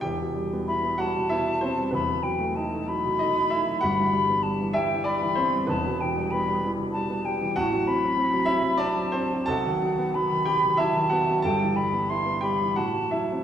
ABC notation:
X:1
M:3/4
L:1/16
Q:1/4=95
K:Em
V:1 name="Flute"
z4 b2 a6 | b2 g2 a2 b6 | b4 a2 g2 b4 | a2 g2 b2 z2 a2 g2 |
a2 b6 a4 | f4 b4 a4 | g2 b2 c'2 b2 a2 z2 |]
V:2 name="Grand piano"
[Gg]6 [Ff]2 [Ee]2 [Cc]2 | [B,B]6 z2 [^D^d]2 [Ee]2 | [Ff]6 [Ee]2 [Dd]2 [Cc]2 | [B,B]6 z6 |
[Ff]6 [Ee]2 [Dd]2 [Cc]2 | [Aa]6 [Gg]2 [Ee]2 [Ff]2 | [Aa]6 [Gg]2 [Ff]2 [Ee]2 |]
V:3 name="Grand piano" clef=bass
[E,,,E,,] B,, G, B, E B, G, B,, B, E B, G, | [E,,,E,,] B,, F, A, ^D A, F, B,, A, D A, F, | [G,,,G,,] E, G, B, G, E, G, E, G, E, B, G, | [E,,,E,,] B,, E, G, B, G, E, B,, G, B, G, E, |
[A,,,A,,] F, C F, C F, C F, C F,2 F, | [B,,,B,,] ^D, F, B, F, D, F, D, F, D, B, F, | [G,,,G,,] E, G, B, E B, G, E, A,, E, F, C |]